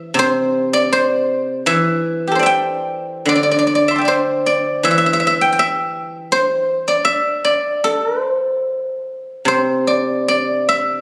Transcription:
0.00 0.91 E3 medium
0.00 0.18 C5 soft
0.00 1.15 E5 medium
0.14 1.66 C3 medium
0.19 0.92 C5 medium
0.73 2.39 D5 medium
0.93 2.35 C5 medium
1.66 4.06 E3 medium
1.66 2.42 E5 medium
2.27 4.63 G4 soft
2.32 4.51 A4 soft
2.32 4.07 C5 soft
2.39 3.28 D5 soft
2.39 3.88 E5 soft
2.46 3.98 G5 medium
3.26 5.56 D3 medium
3.26 3.35 D5 medium
3.35 3.43 D5 medium
3.43 3.51 D5 medium
3.51 3.58 D5 medium
3.59 3.67 D5 medium
3.67 3.75 D5 medium
3.75 4.05 D5 medium
3.88 4.01 E5 medium
3.88 5.21 C6 soft
3.96 5.41 G5 soft
3.96 5.40 A5 soft
4.01 4.46 D5 soft
4.01 4.84 E5 soft
4.08 6.06 C5 medium
4.46 6.31 D5 medium
4.83 7.04 E3 medium
4.83 4.90 E5 medium
4.91 4.97 E5 medium
4.98 5.06 E5 medium
5.06 5.13 E5 medium
5.13 5.19 E5 medium
5.20 5.26 E5 medium
5.27 5.59 E5 medium
5.41 5.52 G5 medium
5.53 7.08 G5 medium
5.59 7.04 E5 medium
6.32 7.84 C5 medium
6.88 7.44 D5 medium
7.05 8.77 E5 medium
7.45 9.29 D5 medium
7.84 8.22 A4 medium
8.22 9.47 C5 medium
9.45 11.01 C3 soft
9.45 11.01 C5 medium
9.87 10.28 D5 medium
10.28 11.01 D5 medium
10.69 11.01 E5 medium

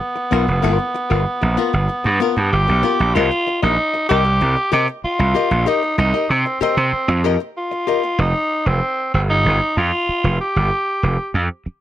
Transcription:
0.00 2.51 B3 medium
0.16 muted hollow-body jazz guitar stroke soft
0.31 0.45 B1 medium
0.31 0.45 B3 medium
0.31 0.46 F4 medium
0.31 0.46 A#4 medium
0.47 0.61 F1 medium
0.47 muted hollow-body jazz guitar stroke soft
0.62 0.77 G1 loud
0.62 0.83 B3 medium
0.62 0.78 F4 medium
0.62 0.77 A#4 loud
0.78 muted hollow-body jazz guitar stroke soft
0.94 muted hollow-body jazz guitar stroke soft
1.10 1.24 G1 loud
1.10 1.22 B3 soft
1.10 1.21 F4 medium
1.10 1.21 A#4 medium
1.27 muted slap bass stroke soft
1.41 1.56 A#1 medium
1.41 muted hollow-body jazz guitar stroke medium
1.57 1.71 B3 medium
1.57 1.72 F4 medium
1.57 1.72 A#4 loud
1.73 1.87 G1 loud
1.73 muted hollow-body jazz guitar stroke soft
1.88 muted hollow-body jazz guitar stroke soft
2.04 2.19 G2 loud
2.04 muted hollow-body jazz guitar stroke soft
2.20 2.34 B3 medium
2.20 2.35 F4 medium
2.20 2.35 A#4 loud
2.36 2.50 G2 medium
2.36 muted hollow-body jazz guitar stroke soft
2.52 2.66 G1 medium
2.52 3.16 G4 loud
2.68 2.82 B1 loud
2.68 muted hollow-body jazz guitar stroke medium
2.83 2.97 B3 medium
2.83 2.98 F4 medium
2.83 2.98 A#4 medium
2.99 3.13 A#1 medium
2.99 muted hollow-body jazz guitar stroke medium
3.15 3.29 C2 loud
3.15 3.62 F4 loud
3.15 3.29 G4 medium
3.15 3.29 A#4 loud
3.15 3.30 D#5 loud
3.31 muted hollow-body jazz guitar stroke medium
3.47 muted hollow-body jazz guitar stroke soft
3.62 3.76 A#1 loud
3.62 4.07 D#4 loud
3.62 3.74 G4 medium
3.62 3.74 A#4 medium
3.62 3.73 D#5 medium
3.94 muted hollow-body jazz guitar stroke medium
4.09 4.37 C2 medium
4.09 4.23 G4 medium
4.09 4.68 G4 loud
4.09 4.24 A#4 loud
4.09 4.23 D#5 loud
4.25 muted hollow-body jazz guitar stroke medium
4.41 4.55 C2 loud
4.41 muted hollow-body jazz guitar stroke medium
4.56 muted hollow-body jazz guitar stroke soft
4.72 4.86 C3 loud
4.72 4.86 G4 medium
4.72 4.87 G4 loud
4.72 4.86 A#4 medium
4.72 4.87 D#5 loud
4.88 muted hollow-body jazz guitar stroke soft
5.04 5.69 F4 loud
5.04 muted slap bass stroke medium
5.19 5.33 C2 medium
5.19 muted hollow-body jazz guitar stroke medium
5.35 5.49 G4 medium
5.35 5.49 A#4 medium
5.35 5.50 D#5 loud
5.51 5.65 A#1 medium
5.51 muted hollow-body jazz guitar stroke medium
5.66 5.98 D#4 loud
5.66 5.80 G4 medium
5.66 5.81 A#4 loud
5.66 5.81 D#5 loud
5.83 muted hollow-body jazz guitar stroke soft
5.98 6.12 C2 medium
5.98 6.32 D#4 loud
5.98 muted hollow-body jazz guitar stroke soft
6.14 6.26 G4 medium
6.14 6.25 A#4 medium
6.14 6.25 D#5 medium
6.30 6.44 C3 loud
6.30 6.61 C4 medium
6.46 muted hollow-body jazz guitar stroke soft
6.61 7.25 C4 loud
6.61 6.75 G4 loud
6.61 6.76 A#4 loud
6.61 6.76 D#5 loud
6.61 muted slap bass stroke medium
6.77 6.91 C3 loud
6.77 muted hollow-body jazz guitar stroke medium
6.93 muted slap bass stroke soft
7.08 7.36 F2 loud
7.08 muted hollow-body jazz guitar stroke soft
7.24 7.38 G4 medium
7.24 7.39 A#4 loud
7.24 7.39 D#5 loud
7.40 muted hollow-body jazz guitar stroke medium
7.57 8.21 F4 medium
7.71 muted hollow-body jazz guitar stroke soft
7.87 8.01 G4 medium
7.87 8.02 A#4 medium
7.87 8.02 D#5 medium
8.03 muted hollow-body jazz guitar stroke medium
8.19 8.32 F1 loud
8.19 8.68 D#4 loud
8.66 8.80 F1 loud
8.66 9.14 C4 medium
9.14 9.41 G1 loud
9.14 9.21 C4 medium
9.30 9.79 D#4 loud
9.45 9.59 G1 loud
9.77 9.90 F2 loud
9.77 10.40 F4 loud
10.09 muted slap bass stroke medium
10.24 10.38 F1 loud
10.41 11.31 G4 loud
10.56 10.69 G1 loud
11.03 11.17 F1 loud
11.34 11.48 F2 loud
11.66 muted slap bass stroke soft

